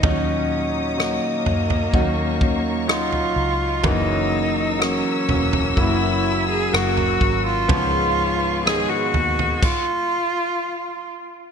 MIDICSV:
0, 0, Header, 1, 7, 480
1, 0, Start_track
1, 0, Key_signature, 6, "major"
1, 0, Tempo, 956938
1, 17, Time_signature, 4, 2, 24, 8
1, 3857, Tempo, 974026
1, 5743, End_track
2, 0, Start_track
2, 0, Title_t, "String section"
2, 0, Program_c, 0, 48
2, 15, Note_on_c, 0, 87, 66
2, 16, Note_on_c, 0, 73, 59
2, 16, Note_on_c, 0, 82, 53
2, 961, Note_off_c, 0, 87, 0
2, 963, Note_on_c, 0, 85, 65
2, 1908, Note_off_c, 0, 73, 0
2, 1914, Note_off_c, 0, 85, 0
2, 1926, Note_on_c, 0, 88, 80
2, 1928, Note_on_c, 0, 70, 69
2, 3837, Note_off_c, 0, 82, 0
2, 3837, Note_off_c, 0, 88, 0
2, 3839, Note_off_c, 0, 70, 0
2, 3854, Note_on_c, 0, 77, 67
2, 3854, Note_on_c, 0, 85, 68
2, 3855, Note_on_c, 0, 71, 68
2, 4798, Note_off_c, 0, 77, 0
2, 4799, Note_off_c, 0, 71, 0
2, 4799, Note_off_c, 0, 85, 0
2, 5743, End_track
3, 0, Start_track
3, 0, Title_t, "Cello"
3, 0, Program_c, 1, 42
3, 30, Note_on_c, 1, 61, 77
3, 500, Note_on_c, 1, 58, 86
3, 508, Note_off_c, 1, 61, 0
3, 1452, Note_off_c, 1, 58, 0
3, 1454, Note_on_c, 1, 65, 83
3, 1935, Note_on_c, 1, 63, 95
3, 1943, Note_off_c, 1, 65, 0
3, 2415, Note_on_c, 1, 61, 94
3, 2423, Note_off_c, 1, 63, 0
3, 2893, Note_on_c, 1, 64, 92
3, 2900, Note_off_c, 1, 61, 0
3, 3255, Note_off_c, 1, 64, 0
3, 3258, Note_on_c, 1, 68, 95
3, 3376, Note_on_c, 1, 66, 94
3, 3383, Note_off_c, 1, 68, 0
3, 3737, Note_off_c, 1, 66, 0
3, 3741, Note_on_c, 1, 65, 110
3, 4315, Note_off_c, 1, 65, 0
3, 4332, Note_on_c, 1, 68, 101
3, 4449, Note_on_c, 1, 66, 94
3, 4456, Note_off_c, 1, 68, 0
3, 4815, Note_on_c, 1, 65, 93
3, 4823, Note_off_c, 1, 66, 0
3, 5538, Note_off_c, 1, 65, 0
3, 5743, End_track
4, 0, Start_track
4, 0, Title_t, "Grand piano"
4, 0, Program_c, 2, 0
4, 0, Control_c, 2, 64, 127
4, 16, Note_on_c, 2, 54, 78
4, 19, Note_on_c, 2, 61, 67
4, 21, Note_on_c, 2, 46, 59
4, 21, Note_on_c, 2, 63, 91
4, 23, Control_c, 2, 64, 0
4, 108, Control_c, 2, 64, 127
4, 470, Note_off_c, 2, 54, 0
4, 472, Note_off_c, 2, 61, 0
4, 473, Note_off_c, 2, 63, 0
4, 486, Note_on_c, 2, 54, 54
4, 488, Note_on_c, 2, 61, 46
4, 490, Note_on_c, 2, 63, 57
4, 715, Note_off_c, 2, 46, 0
4, 944, Note_off_c, 2, 54, 0
4, 945, Note_off_c, 2, 61, 0
4, 946, Note_off_c, 2, 63, 0
4, 968, Note_on_c, 2, 54, 64
4, 971, Note_on_c, 2, 61, 55
4, 974, Note_on_c, 2, 63, 70
4, 1423, Note_off_c, 2, 54, 0
4, 1425, Note_off_c, 2, 61, 0
4, 1426, Note_off_c, 2, 63, 0
4, 1441, Note_on_c, 2, 54, 61
4, 1443, Note_on_c, 2, 61, 61
4, 1445, Note_on_c, 2, 63, 75
4, 1900, Note_off_c, 2, 54, 0
4, 1901, Note_off_c, 2, 61, 0
4, 1902, Note_off_c, 2, 63, 0
4, 1922, Note_on_c, 2, 58, 77
4, 1923, Note_on_c, 2, 49, 59
4, 1923, Note_on_c, 2, 54, 91
4, 1927, Note_on_c, 2, 52, 93
4, 1935, Control_c, 2, 64, 0
4, 2033, Control_c, 2, 64, 127
4, 2382, Note_off_c, 2, 54, 0
4, 2382, Note_off_c, 2, 58, 0
4, 2384, Note_off_c, 2, 52, 0
4, 2402, Note_on_c, 2, 54, 61
4, 2404, Note_on_c, 2, 58, 50
4, 2406, Note_on_c, 2, 66, 64
4, 2628, Note_off_c, 2, 49, 0
4, 2864, Note_off_c, 2, 54, 0
4, 2865, Note_off_c, 2, 58, 0
4, 2866, Note_off_c, 2, 66, 0
4, 2889, Note_on_c, 2, 54, 71
4, 2892, Note_on_c, 2, 58, 60
4, 2896, Note_on_c, 2, 64, 78
4, 3349, Note_off_c, 2, 54, 0
4, 3350, Note_off_c, 2, 58, 0
4, 3353, Note_off_c, 2, 64, 0
4, 3372, Note_on_c, 2, 54, 64
4, 3373, Note_on_c, 2, 58, 65
4, 3378, Note_on_c, 2, 66, 76
4, 3832, Note_off_c, 2, 54, 0
4, 3832, Note_off_c, 2, 58, 0
4, 3835, Note_off_c, 2, 66, 0
4, 3854, Note_on_c, 2, 53, 90
4, 3855, Note_on_c, 2, 59, 85
4, 3858, Note_on_c, 2, 44, 59
4, 3861, Note_on_c, 2, 61, 101
4, 3864, Control_c, 2, 64, 0
4, 3950, Control_c, 2, 64, 127
4, 4307, Note_off_c, 2, 53, 0
4, 4308, Note_off_c, 2, 59, 0
4, 4311, Note_off_c, 2, 61, 0
4, 4332, Note_on_c, 2, 59, 61
4, 4333, Note_on_c, 2, 51, 48
4, 4335, Note_on_c, 2, 63, 71
4, 4364, Note_on_c, 2, 56, 57
4, 4365, Note_off_c, 2, 51, 0
4, 4551, Note_off_c, 2, 44, 0
4, 4786, Note_off_c, 2, 59, 0
4, 4787, Note_off_c, 2, 63, 0
4, 4801, Note_off_c, 2, 56, 0
4, 4817, Control_c, 2, 64, 0
4, 5743, End_track
5, 0, Start_track
5, 0, Title_t, "Steel-string acoustic guitar"
5, 0, Program_c, 3, 25
5, 7, Note_on_c, 3, 51, 68
5, 17, Note_on_c, 3, 58, 71
5, 22, Note_on_c, 3, 61, 70
5, 27, Note_on_c, 3, 66, 68
5, 958, Note_off_c, 3, 51, 0
5, 964, Note_on_c, 3, 51, 70
5, 966, Note_off_c, 3, 58, 0
5, 967, Note_off_c, 3, 61, 0
5, 968, Note_on_c, 3, 58, 76
5, 969, Note_on_c, 3, 61, 71
5, 971, Note_off_c, 3, 66, 0
5, 973, Note_on_c, 3, 66, 83
5, 1207, Note_off_c, 3, 51, 0
5, 1209, Note_off_c, 3, 58, 0
5, 1209, Note_off_c, 3, 61, 0
5, 1211, Note_off_c, 3, 66, 0
5, 1216, Note_on_c, 3, 61, 43
5, 1222, Note_on_c, 3, 58, 42
5, 1930, Note_on_c, 3, 42, 69
5, 1932, Note_on_c, 3, 49, 69
5, 1934, Note_on_c, 3, 52, 78
5, 1935, Note_off_c, 3, 58, 0
5, 1936, Note_off_c, 3, 61, 0
5, 1937, Note_on_c, 3, 58, 74
5, 1938, Note_on_c, 3, 61, 75
5, 1939, Note_on_c, 3, 66, 81
5, 2644, Note_off_c, 3, 66, 0
5, 2650, Note_on_c, 3, 66, 41
5, 2652, Note_off_c, 3, 42, 0
5, 2653, Note_off_c, 3, 49, 0
5, 2653, Note_off_c, 3, 61, 0
5, 2654, Note_off_c, 3, 52, 0
5, 2654, Note_off_c, 3, 58, 0
5, 2655, Note_on_c, 3, 61, 44
5, 2660, Note_on_c, 3, 58, 44
5, 2664, Note_on_c, 3, 52, 35
5, 2890, Note_on_c, 3, 42, 74
5, 2892, Note_off_c, 3, 66, 0
5, 2894, Note_off_c, 3, 52, 0
5, 2894, Note_off_c, 3, 61, 0
5, 2895, Note_on_c, 3, 49, 73
5, 2897, Note_off_c, 3, 58, 0
5, 2900, Note_on_c, 3, 52, 78
5, 2903, Note_on_c, 3, 58, 72
5, 2906, Note_on_c, 3, 61, 93
5, 2912, Note_on_c, 3, 66, 79
5, 3846, Note_off_c, 3, 49, 0
5, 3852, Note_on_c, 3, 49, 75
5, 3856, Note_off_c, 3, 42, 0
5, 3857, Note_off_c, 3, 52, 0
5, 3859, Note_on_c, 3, 56, 87
5, 3861, Note_off_c, 3, 58, 0
5, 3863, Note_on_c, 3, 59, 84
5, 3867, Note_off_c, 3, 66, 0
5, 3873, Note_on_c, 3, 68, 74
5, 3878, Note_off_c, 3, 61, 0
5, 4808, Note_off_c, 3, 49, 0
5, 4813, Note_off_c, 3, 59, 0
5, 5064, Note_off_c, 3, 56, 0
5, 5064, Note_off_c, 3, 68, 0
5, 5743, End_track
6, 0, Start_track
6, 0, Title_t, "Fingered electric bass"
6, 0, Program_c, 4, 33
6, 18, Note_on_c, 4, 39, 84
6, 594, Note_off_c, 4, 39, 0
6, 734, Note_on_c, 4, 42, 73
6, 956, Note_off_c, 4, 42, 0
6, 972, Note_on_c, 4, 39, 93
6, 1668, Note_off_c, 4, 39, 0
6, 1686, Note_on_c, 4, 37, 87
6, 1910, Note_off_c, 4, 37, 0
6, 1928, Note_on_c, 4, 30, 86
6, 2510, Note_off_c, 4, 30, 0
6, 2652, Note_on_c, 4, 28, 80
6, 2876, Note_off_c, 4, 28, 0
6, 2895, Note_on_c, 4, 30, 93
6, 3356, Note_off_c, 4, 30, 0
6, 3379, Note_on_c, 4, 30, 90
6, 3601, Note_off_c, 4, 30, 0
6, 3618, Note_on_c, 4, 32, 84
6, 3842, Note_off_c, 4, 32, 0
6, 3860, Note_on_c, 4, 37, 103
6, 4433, Note_off_c, 4, 37, 0
6, 4573, Note_on_c, 4, 39, 80
6, 4794, Note_off_c, 4, 39, 0
6, 5743, End_track
7, 0, Start_track
7, 0, Title_t, "Drums"
7, 16, Note_on_c, 9, 43, 90
7, 17, Note_on_c, 9, 36, 92
7, 67, Note_off_c, 9, 36, 0
7, 67, Note_off_c, 9, 43, 0
7, 501, Note_on_c, 9, 37, 81
7, 551, Note_off_c, 9, 37, 0
7, 733, Note_on_c, 9, 43, 58
7, 784, Note_off_c, 9, 43, 0
7, 853, Note_on_c, 9, 43, 65
7, 903, Note_off_c, 9, 43, 0
7, 971, Note_on_c, 9, 36, 86
7, 1021, Note_off_c, 9, 36, 0
7, 1209, Note_on_c, 9, 36, 84
7, 1259, Note_off_c, 9, 36, 0
7, 1452, Note_on_c, 9, 37, 98
7, 1502, Note_off_c, 9, 37, 0
7, 1567, Note_on_c, 9, 43, 49
7, 1617, Note_off_c, 9, 43, 0
7, 1924, Note_on_c, 9, 43, 93
7, 1926, Note_on_c, 9, 36, 101
7, 1974, Note_off_c, 9, 43, 0
7, 1977, Note_off_c, 9, 36, 0
7, 2417, Note_on_c, 9, 37, 92
7, 2467, Note_off_c, 9, 37, 0
7, 2652, Note_on_c, 9, 43, 66
7, 2702, Note_off_c, 9, 43, 0
7, 2774, Note_on_c, 9, 43, 68
7, 2824, Note_off_c, 9, 43, 0
7, 2894, Note_on_c, 9, 36, 83
7, 2945, Note_off_c, 9, 36, 0
7, 3383, Note_on_c, 9, 37, 104
7, 3433, Note_off_c, 9, 37, 0
7, 3497, Note_on_c, 9, 43, 55
7, 3547, Note_off_c, 9, 43, 0
7, 3616, Note_on_c, 9, 36, 85
7, 3667, Note_off_c, 9, 36, 0
7, 3859, Note_on_c, 9, 36, 101
7, 3860, Note_on_c, 9, 43, 109
7, 3908, Note_off_c, 9, 36, 0
7, 3909, Note_off_c, 9, 43, 0
7, 4341, Note_on_c, 9, 37, 101
7, 4390, Note_off_c, 9, 37, 0
7, 4572, Note_on_c, 9, 43, 61
7, 4621, Note_off_c, 9, 43, 0
7, 4695, Note_on_c, 9, 43, 68
7, 4745, Note_off_c, 9, 43, 0
7, 4811, Note_on_c, 9, 36, 105
7, 4811, Note_on_c, 9, 49, 75
7, 4860, Note_off_c, 9, 36, 0
7, 4860, Note_off_c, 9, 49, 0
7, 5743, End_track
0, 0, End_of_file